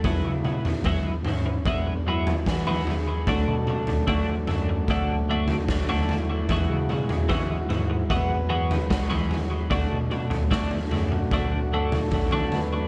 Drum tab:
SD |------------o---|------------o---|------------o---|----o-----------|
T2 |--o-------------|--o-------------|--o-------------|--o----o---o----|
FT |o--oo-o----o-oo-|o--oo-o----o-oo-|o--oo-o----o-oo-|o--oooo----oooo-|
BD |o---o---o---o---|o---o---o---o---|o---o---o---o---|o---o---o---o---|